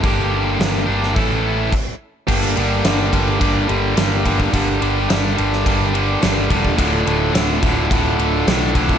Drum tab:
CC |------------x---|x---------------|----------------|----------------|
RD |----------------|--x-x-x-x-x-x-x-|x-x-x-x-x-x-x-x-|x-x-x-x-x-x-x-x-|
HH |o---o---o-------|----------------|----------------|----------------|
SD |----o--o--------|----o-------o---|----o--o----o---|----o-------o---|
BD |o-------o---o---|o-----o-o-----oo|o-------o-----oo|o-----o-o-----oo|